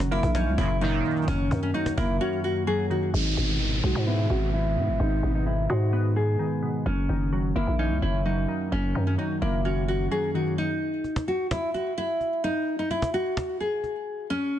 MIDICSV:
0, 0, Header, 1, 7, 480
1, 0, Start_track
1, 0, Tempo, 465116
1, 1319, Time_signature, 4, 2, 24, 8
1, 15059, End_track
2, 0, Start_track
2, 0, Title_t, "Nylon-string guitar"
2, 0, Program_c, 0, 24
2, 121, Note_on_c, 0, 64, 92
2, 304, Note_off_c, 0, 64, 0
2, 360, Note_on_c, 0, 63, 101
2, 543, Note_off_c, 0, 63, 0
2, 599, Note_on_c, 0, 64, 84
2, 782, Note_off_c, 0, 64, 0
2, 839, Note_on_c, 0, 63, 87
2, 1290, Note_off_c, 0, 63, 0
2, 1321, Note_on_c, 0, 61, 111
2, 1659, Note_off_c, 0, 61, 0
2, 1679, Note_on_c, 0, 61, 81
2, 1771, Note_off_c, 0, 61, 0
2, 1799, Note_on_c, 0, 63, 84
2, 1983, Note_off_c, 0, 63, 0
2, 2040, Note_on_c, 0, 64, 92
2, 2223, Note_off_c, 0, 64, 0
2, 2278, Note_on_c, 0, 66, 86
2, 2462, Note_off_c, 0, 66, 0
2, 2519, Note_on_c, 0, 66, 83
2, 2703, Note_off_c, 0, 66, 0
2, 2758, Note_on_c, 0, 68, 97
2, 2942, Note_off_c, 0, 68, 0
2, 3001, Note_on_c, 0, 66, 73
2, 3184, Note_off_c, 0, 66, 0
2, 3240, Note_on_c, 0, 63, 91
2, 3918, Note_off_c, 0, 63, 0
2, 3961, Note_on_c, 0, 66, 79
2, 4144, Note_off_c, 0, 66, 0
2, 4200, Note_on_c, 0, 64, 87
2, 4383, Note_off_c, 0, 64, 0
2, 4438, Note_on_c, 0, 66, 72
2, 4622, Note_off_c, 0, 66, 0
2, 4680, Note_on_c, 0, 64, 89
2, 5131, Note_off_c, 0, 64, 0
2, 5157, Note_on_c, 0, 63, 99
2, 5497, Note_off_c, 0, 63, 0
2, 5520, Note_on_c, 0, 63, 76
2, 5611, Note_off_c, 0, 63, 0
2, 5640, Note_on_c, 0, 64, 80
2, 5823, Note_off_c, 0, 64, 0
2, 5879, Note_on_c, 0, 66, 83
2, 6330, Note_off_c, 0, 66, 0
2, 6359, Note_on_c, 0, 68, 82
2, 7038, Note_off_c, 0, 68, 0
2, 7079, Note_on_c, 0, 61, 106
2, 7758, Note_off_c, 0, 61, 0
2, 7801, Note_on_c, 0, 64, 87
2, 7984, Note_off_c, 0, 64, 0
2, 8040, Note_on_c, 0, 63, 94
2, 8223, Note_off_c, 0, 63, 0
2, 8279, Note_on_c, 0, 64, 78
2, 8463, Note_off_c, 0, 64, 0
2, 8519, Note_on_c, 0, 63, 83
2, 8970, Note_off_c, 0, 63, 0
2, 9001, Note_on_c, 0, 61, 103
2, 9339, Note_off_c, 0, 61, 0
2, 9359, Note_on_c, 0, 61, 74
2, 9451, Note_off_c, 0, 61, 0
2, 9480, Note_on_c, 0, 63, 79
2, 9663, Note_off_c, 0, 63, 0
2, 9720, Note_on_c, 0, 64, 85
2, 9903, Note_off_c, 0, 64, 0
2, 9959, Note_on_c, 0, 66, 82
2, 10143, Note_off_c, 0, 66, 0
2, 10200, Note_on_c, 0, 66, 78
2, 10383, Note_off_c, 0, 66, 0
2, 10438, Note_on_c, 0, 68, 93
2, 10622, Note_off_c, 0, 68, 0
2, 10682, Note_on_c, 0, 66, 71
2, 10864, Note_off_c, 0, 66, 0
2, 10921, Note_on_c, 0, 63, 100
2, 11598, Note_off_c, 0, 63, 0
2, 11640, Note_on_c, 0, 66, 79
2, 11823, Note_off_c, 0, 66, 0
2, 11880, Note_on_c, 0, 64, 90
2, 12063, Note_off_c, 0, 64, 0
2, 12118, Note_on_c, 0, 66, 77
2, 12302, Note_off_c, 0, 66, 0
2, 12360, Note_on_c, 0, 64, 93
2, 12810, Note_off_c, 0, 64, 0
2, 12837, Note_on_c, 0, 63, 101
2, 13176, Note_off_c, 0, 63, 0
2, 13199, Note_on_c, 0, 63, 78
2, 13291, Note_off_c, 0, 63, 0
2, 13320, Note_on_c, 0, 64, 83
2, 13503, Note_off_c, 0, 64, 0
2, 13559, Note_on_c, 0, 66, 83
2, 14010, Note_off_c, 0, 66, 0
2, 14039, Note_on_c, 0, 68, 82
2, 14718, Note_off_c, 0, 68, 0
2, 14759, Note_on_c, 0, 61, 110
2, 15059, Note_off_c, 0, 61, 0
2, 15059, End_track
3, 0, Start_track
3, 0, Title_t, "Synth keys"
3, 0, Program_c, 1, 88
3, 0, Control_c, 1, 64, 127
3, 0, Note_on_c, 1, 42, 95
3, 0, Note_on_c, 1, 51, 85
3, 0, Note_on_c, 1, 54, 81
3, 117, Note_on_c, 1, 58, 91
3, 358, Note_on_c, 1, 61, 97
3, 599, Note_off_c, 1, 42, 0
3, 828, Note_off_c, 1, 54, 0
3, 839, Note_off_c, 1, 51, 0
3, 840, Note_on_c, 1, 54, 88
3, 1076, Note_on_c, 1, 51, 91
3, 1318, Note_off_c, 1, 58, 0
3, 1318, Note_on_c, 1, 42, 94
3, 1541, Note_off_c, 1, 51, 0
3, 1553, Note_on_c, 1, 51, 81
3, 1559, Note_off_c, 1, 61, 0
3, 1783, Note_off_c, 1, 54, 0
3, 1795, Note_on_c, 1, 54, 87
3, 2040, Note_on_c, 1, 58, 90
3, 2281, Note_on_c, 1, 61, 88
3, 2518, Note_off_c, 1, 42, 0
3, 2745, Note_off_c, 1, 54, 0
3, 2756, Note_off_c, 1, 51, 0
3, 2758, Note_on_c, 1, 54, 95
3, 2997, Note_on_c, 1, 51, 86
3, 3237, Note_on_c, 1, 44, 87
3, 3238, Note_off_c, 1, 51, 0
3, 3238, Note_off_c, 1, 54, 0
3, 3240, Note_off_c, 1, 58, 0
3, 3240, Note_off_c, 1, 61, 0
3, 3253, Control_c, 1, 64, 0
3, 3455, Control_c, 1, 64, 127
3, 3479, Note_on_c, 1, 47, 80
3, 3717, Note_on_c, 1, 51, 75
3, 3959, Note_on_c, 1, 56, 88
3, 4199, Note_on_c, 1, 59, 87
3, 4438, Note_off_c, 1, 44, 0
3, 4679, Note_off_c, 1, 47, 0
3, 4916, Note_on_c, 1, 47, 82
3, 4918, Note_off_c, 1, 51, 0
3, 5159, Note_off_c, 1, 56, 0
3, 5160, Note_on_c, 1, 44, 83
3, 5388, Note_off_c, 1, 47, 0
3, 5399, Note_off_c, 1, 59, 0
3, 5400, Note_on_c, 1, 47, 73
3, 5638, Note_on_c, 1, 51, 79
3, 5884, Note_on_c, 1, 56, 81
3, 6117, Note_on_c, 1, 59, 91
3, 6359, Note_off_c, 1, 44, 0
3, 6584, Note_off_c, 1, 51, 0
3, 6597, Note_on_c, 1, 51, 85
3, 6600, Note_off_c, 1, 47, 0
3, 6837, Note_on_c, 1, 47, 81
3, 7078, Note_off_c, 1, 47, 0
3, 7078, Note_off_c, 1, 51, 0
3, 7078, Note_off_c, 1, 59, 0
3, 7079, Note_on_c, 1, 42, 91
3, 7081, Note_off_c, 1, 56, 0
3, 7092, Control_c, 1, 64, 0
3, 7260, Control_c, 1, 64, 127
3, 7319, Note_on_c, 1, 51, 79
3, 7560, Note_on_c, 1, 54, 82
3, 7797, Note_on_c, 1, 58, 85
3, 8039, Note_on_c, 1, 61, 89
3, 8279, Note_off_c, 1, 42, 0
3, 8508, Note_off_c, 1, 54, 0
3, 8519, Note_off_c, 1, 51, 0
3, 8521, Note_on_c, 1, 54, 87
3, 8756, Note_on_c, 1, 51, 88
3, 8998, Note_off_c, 1, 58, 0
3, 8998, Note_on_c, 1, 42, 90
3, 9221, Note_off_c, 1, 51, 0
3, 9234, Note_on_c, 1, 51, 78
3, 9239, Note_off_c, 1, 61, 0
3, 9463, Note_off_c, 1, 54, 0
3, 9476, Note_on_c, 1, 54, 82
3, 9720, Note_on_c, 1, 58, 83
3, 9960, Note_on_c, 1, 61, 82
3, 10198, Note_off_c, 1, 42, 0
3, 10425, Note_off_c, 1, 54, 0
3, 10436, Note_off_c, 1, 51, 0
3, 10438, Note_on_c, 1, 54, 90
3, 10677, Note_on_c, 1, 51, 80
3, 10918, Note_off_c, 1, 51, 0
3, 10918, Note_off_c, 1, 54, 0
3, 10920, Note_off_c, 1, 58, 0
3, 10920, Note_off_c, 1, 61, 0
3, 10931, Control_c, 1, 64, 0
3, 11138, Control_c, 1, 64, 127
3, 14772, Control_c, 1, 64, 0
3, 15059, End_track
4, 0, Start_track
4, 0, Title_t, "Analog polysynth"
4, 0, Program_c, 2, 90
4, 599, Note_on_c, 2, 42, 84
4, 599, Note_on_c, 2, 46, 93
4, 599, Note_on_c, 2, 49, 99
4, 701, Note_off_c, 2, 42, 0
4, 701, Note_off_c, 2, 46, 0
4, 701, Note_off_c, 2, 49, 0
4, 839, Note_on_c, 2, 51, 120
4, 840, Note_on_c, 2, 42, 97
4, 840, Note_on_c, 2, 46, 103
4, 1295, Note_off_c, 2, 42, 0
4, 1295, Note_off_c, 2, 46, 0
4, 1295, Note_off_c, 2, 51, 0
4, 15059, End_track
5, 0, Start_track
5, 0, Title_t, "808-style bass"
5, 0, Program_c, 3, 38
5, 0, Note_on_c, 3, 30, 101
5, 215, Note_off_c, 3, 30, 0
5, 239, Note_on_c, 3, 34, 113
5, 479, Note_on_c, 3, 37, 103
5, 495, Note_off_c, 3, 34, 0
5, 593, Note_off_c, 3, 37, 0
5, 599, Note_on_c, 3, 30, 107
5, 1060, Note_off_c, 3, 30, 0
5, 1319, Note_on_c, 3, 30, 110
5, 1549, Note_off_c, 3, 30, 0
5, 1559, Note_on_c, 3, 42, 102
5, 1790, Note_off_c, 3, 42, 0
5, 2039, Note_on_c, 3, 30, 107
5, 2269, Note_off_c, 3, 30, 0
5, 3239, Note_on_c, 3, 32, 108
5, 3469, Note_off_c, 3, 32, 0
5, 3479, Note_on_c, 3, 32, 99
5, 3940, Note_off_c, 3, 32, 0
5, 3959, Note_on_c, 3, 35, 100
5, 4074, Note_off_c, 3, 35, 0
5, 4079, Note_on_c, 3, 44, 97
5, 4425, Note_off_c, 3, 44, 0
5, 4439, Note_on_c, 3, 32, 110
5, 4919, Note_on_c, 3, 44, 99
5, 4934, Note_off_c, 3, 32, 0
5, 5039, Note_on_c, 3, 32, 91
5, 5054, Note_off_c, 3, 44, 0
5, 5153, Note_off_c, 3, 32, 0
5, 5159, Note_on_c, 3, 32, 110
5, 5389, Note_off_c, 3, 32, 0
5, 5399, Note_on_c, 3, 32, 101
5, 5860, Note_off_c, 3, 32, 0
5, 5879, Note_on_c, 3, 44, 101
5, 6570, Note_off_c, 3, 44, 0
5, 7079, Note_on_c, 3, 30, 110
5, 7309, Note_off_c, 3, 30, 0
5, 7319, Note_on_c, 3, 30, 99
5, 7780, Note_off_c, 3, 30, 0
5, 7799, Note_on_c, 3, 30, 102
5, 7914, Note_off_c, 3, 30, 0
5, 7919, Note_on_c, 3, 34, 103
5, 8159, Note_on_c, 3, 37, 95
5, 8175, Note_off_c, 3, 34, 0
5, 8273, Note_off_c, 3, 37, 0
5, 8280, Note_on_c, 3, 30, 101
5, 8740, Note_off_c, 3, 30, 0
5, 8999, Note_on_c, 3, 30, 112
5, 9230, Note_off_c, 3, 30, 0
5, 9239, Note_on_c, 3, 42, 101
5, 9469, Note_off_c, 3, 42, 0
5, 9719, Note_on_c, 3, 30, 97
5, 10410, Note_off_c, 3, 30, 0
5, 15059, End_track
6, 0, Start_track
6, 0, Title_t, "Downlifter"
6, 0, Program_c, 4, 103
6, 3239, Note_on_c, 4, 60, 80
6, 7079, Note_off_c, 4, 60, 0
6, 15059, End_track
7, 0, Start_track
7, 0, Title_t, "Cajon"
7, 0, Note_on_c, 9, 38, 98
7, 103, Note_off_c, 9, 38, 0
7, 180, Note_on_c, 9, 38, 41
7, 239, Note_on_c, 9, 36, 91
7, 283, Note_off_c, 9, 38, 0
7, 299, Note_on_c, 9, 38, 27
7, 342, Note_off_c, 9, 36, 0
7, 359, Note_off_c, 9, 38, 0
7, 359, Note_on_c, 9, 38, 110
7, 463, Note_off_c, 9, 38, 0
7, 599, Note_on_c, 9, 36, 98
7, 702, Note_off_c, 9, 36, 0
7, 838, Note_on_c, 9, 38, 45
7, 941, Note_off_c, 9, 38, 0
7, 1079, Note_on_c, 9, 38, 29
7, 1139, Note_off_c, 9, 38, 0
7, 1139, Note_on_c, 9, 38, 35
7, 1199, Note_off_c, 9, 38, 0
7, 1199, Note_on_c, 9, 38, 41
7, 1259, Note_off_c, 9, 38, 0
7, 1259, Note_on_c, 9, 38, 47
7, 1319, Note_on_c, 9, 36, 115
7, 1363, Note_off_c, 9, 38, 0
7, 1422, Note_off_c, 9, 36, 0
7, 1559, Note_on_c, 9, 36, 90
7, 1663, Note_off_c, 9, 36, 0
7, 1796, Note_on_c, 9, 38, 41
7, 1899, Note_off_c, 9, 38, 0
7, 1920, Note_on_c, 9, 38, 96
7, 2023, Note_off_c, 9, 38, 0
7, 2039, Note_on_c, 9, 36, 100
7, 2142, Note_off_c, 9, 36, 0
7, 10920, Note_on_c, 9, 38, 46
7, 11023, Note_off_c, 9, 38, 0
7, 11396, Note_on_c, 9, 38, 43
7, 11499, Note_off_c, 9, 38, 0
7, 11520, Note_on_c, 9, 38, 91
7, 11623, Note_off_c, 9, 38, 0
7, 11636, Note_on_c, 9, 38, 45
7, 11739, Note_off_c, 9, 38, 0
7, 11879, Note_on_c, 9, 38, 110
7, 11982, Note_off_c, 9, 38, 0
7, 12120, Note_on_c, 9, 38, 45
7, 12223, Note_off_c, 9, 38, 0
7, 12358, Note_on_c, 9, 38, 40
7, 12461, Note_off_c, 9, 38, 0
7, 12595, Note_on_c, 9, 38, 47
7, 12698, Note_off_c, 9, 38, 0
7, 12840, Note_on_c, 9, 38, 48
7, 12943, Note_off_c, 9, 38, 0
7, 13316, Note_on_c, 9, 38, 44
7, 13419, Note_off_c, 9, 38, 0
7, 13440, Note_on_c, 9, 38, 92
7, 13543, Note_off_c, 9, 38, 0
7, 13556, Note_on_c, 9, 38, 45
7, 13659, Note_off_c, 9, 38, 0
7, 13799, Note_on_c, 9, 38, 110
7, 13902, Note_off_c, 9, 38, 0
7, 14040, Note_on_c, 9, 38, 43
7, 14143, Note_off_c, 9, 38, 0
7, 14278, Note_on_c, 9, 38, 44
7, 14381, Note_off_c, 9, 38, 0
7, 14760, Note_on_c, 9, 38, 46
7, 14863, Note_off_c, 9, 38, 0
7, 15059, End_track
0, 0, End_of_file